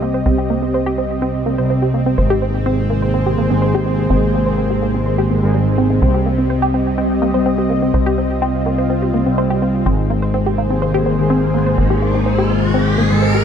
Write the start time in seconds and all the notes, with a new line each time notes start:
Already playing: C2 C3 G3 C4 G4 D#5
0.02 A#3
0.14 C5
0.26 C2 C3 G3 C4
0.38 G4
0.50 A#3
0.62 C4
0.74 C5
0.86 G4
0.98 C4
1.22 C4
1.46 C3 G3 A#3 C4
1.58 C3 G3 C4 C5
1.70 C4
1.82 G4
1.94 A#3
2.06 C4
2.18 G#1 G#2 D#3 G#3 A#3 G#4 C5
2.30 G4
2.42 C4
2.66 C4
2.90 A#3
3.02 C5
3.14 C4
3.26 G4
3.38 G#2 D#3 G#3 A#3
3.50 G#2 D#3 G#3 C4
3.62 C5
3.74 G4
3.86 C4
4.10 G#1 G#2 D#3 G#3 C4
4.34 A#3
4.46 C5
4.58 C4
4.70 G4
4.82 A#3
4.94 C4
5.06 C5
5.18 G4
5.30 G#2 D#3 G#3 C4
5.42 G#2 D#3 G#3
5.54 G3
5.78 C4
5.90 C4
6.02 C2 C3 G3 C4 G4 D#5
6.14 G4
6.26 A#3
6.38 C4
6.50 C5
6.62 G4
6.74 C4
6.98 C4
7.22 C3 G3 A#3 C4
7.34 C3 G3 C4 C5
7.46 C4
7.58 G4
7.70 A#3
7.82 C4
7.94 C2 C3 G3 C4 F4 C5
8.06 G4
8.18 C4
8.42 C4
8.66 A#3
8.78 C5
8.90 C4
9.02 G4
9.14 C3 G3 A#3 C4
9.26 C3 G3 C4
9.38 C5
9.50 G4
9.62 C4
9.86 G#1 G#2 D#3 G#3 A#3 C4 G#4 C5, riser
10.10 A#3
10.22 C5
10.34 C4
10.46 G4
10.58 A#3
10.70 C4
10.82 C5
10.94 G4
11.06 G#2 D#3 G#3 C4
11.18 G#2 D#3 G#3
11.30 C4
11.54 A#3
11.66 C5
11.78 G#1 G#2 D#3 G#3 C4
11.90 G4
12.02 A#3
12.14 C4
12.26 C5
12.38 G4
12.50 C4
12.74 C4
12.98 G#2 D#3 G#3 A#3
13.10 G#2 D#3 G#3 C5
13.22 C4
13.34 G4